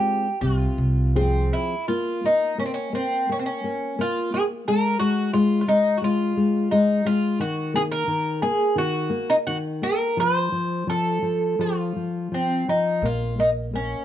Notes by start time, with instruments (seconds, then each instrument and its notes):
Already playing: nylon-string guitar G#3 C4 F4, bouzouki G4
0.41 upright bass C2, nylon-string guitar C3, bouzouki F4
0.78 upright bass C2
1.15 nylon-string guitar F3 C4 G#4, bouzouki C4
1.53 bouzouki E4
1.88 nylon-string guitar A#3, bouzouki F4
2.24 nylon-string guitar A#3, bouzouki D#4
2.58 nylon-string guitar A#3, bouzouki C#4
2.66 bouzouki C4
2.74 bouzouki C#4
2.93 nylon-string guitar A#3, bouzouki C4
3.29 nylon-string guitar A#3, bouzouki C#4
3.39 bouzouki C4
3.46 bouzouki C#4
3.64 nylon-string guitar A#3
3.99 nylon-string guitar A#3, bouzouki F4
4.34 nylon-string guitar A#3, bouzouki G#4
4.68 nylon-string guitar G#3, bouzouki A#4
4.99 nylon-string guitar G#3, bouzouki F#4
5.33 nylon-string guitar G#3, bouzouki F4
5.61 bouzouki F4
5.67 nylon-string guitar G#3, bouzouki D#4
5.97 bouzouki F#4
6.02 nylon-string guitar G#3, bouzouki F4
6.37 nylon-string guitar G#3
6.71 nylon-string guitar G#3, bouzouki D#4
7.05 nylon-string guitar G#3, bouzouki F4
7.39 nylon-string guitar D#3, bouzouki F#4
7.74 nylon-string guitar A#3, bouzouki G#4
7.92 bouzouki A#4
8.07 nylon-string guitar D#3
8.42 nylon-string guitar A#3, bouzouki G#4
8.76 nylon-string guitar D#3, bouzouki F#4
9.10 nylon-string guitar A#3
9.30 bouzouki D#4
9.47 nylon-string guitar D#3, bouzouki F#4
9.82 nylon-string guitar A#3, bouzouki A#4
10.17 nylon-string guitar F3, bouzouki C5
10.52 nylon-string guitar F3
10.87 nylon-string guitar F3, bouzouki A4
11.22 nylon-string guitar F3
11.59 nylon-string guitar F3, bouzouki F4
11.96 nylon-string guitar F3
12.32 nylon-string guitar F3, bouzouki C4
12.68 nylon-string guitar F3, bouzouki D#4
13.02 upright bass A#1, nylon-string guitar A#3, bouzouki F4
13.38 nylon-string guitar A#3, bouzouki D#4
13.73 nylon-string guitar A#3, bouzouki C#4